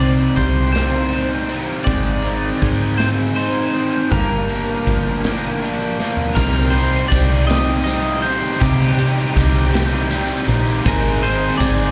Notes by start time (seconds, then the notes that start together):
Already playing: C2 C3 G3 C4 D#4 G4
0.00 C4 D5, closed hi-hat
0.36 C2 G3 C5, kick, closed hi-hat
0.72 C4 D#4 G4 C5, snare, closed hi-hat
0.77 G3
1.12 D#4, closed hi-hat
1.49 C4, closed hi-hat
1.84 G#1 G#3 C4 D#4 G#4 D5, kick, closed hi-hat
2.24 C4, closed hi-hat
2.62 G#2 G#3, kick, closed hi-hat
2.98 C4 D#4 G#4 C5, snare, closed hi-hat
3.36 D#4 C5, closed hi-hat
3.73 C4, closed hi-hat
4.11 G1 G2 A#3 D4 G4 A#4, kick, closed hi-hat
4.49 A#3, closed hi-hat
4.86 G1 F3, kick, closed hi-hat
5.24 A#3 D4 G4, snare, closed hi-hat
5.62 D4, closed hi-hat
5.99 A#3, snare
6.17 floor tom
6.35 C2 C3 G3 C4 D#4 G4 A#4 C6, kick, crash, tambourine
6.70 D#4 G4 C5, ride
6.76 C4
7.08 C2 G3 C4 D5, kick
7.12 D#4 G4, ride, tambourine
7.47 D#4 G4 D#5, snare, ride
7.51 G3 C4
7.84 G3 C4 D#5, ride, tambourine
7.88 D#4 G4
8.22 D#4 G4 C5, ride
8.27 C4
8.60 C3 G3 C4 D#4 G4 D6, kick, ride, tambourine
8.64 G4
8.99 C4 D#4 G4, ride
9.36 C2 G3 C4 D#4 G4, kick, ride, tambourine
9.73 G3 C4 D#4 G4, snare, ride
10.10 G3 C4 D#4 G4, ride, tambourine
10.47 A#1 C4 D#4 G4, ride
10.83 G#1 G#2 D#3 G#3 C4 G#4 C5 A#5, kick, ride, tambourine
10.87 D#4 G#4 A#4
11.22 G#3 C4 D#4 G#4 C5, ride
11.57 G#1 G#3 C4 D#4 D5, kick, ride, tambourine
11.62 G#4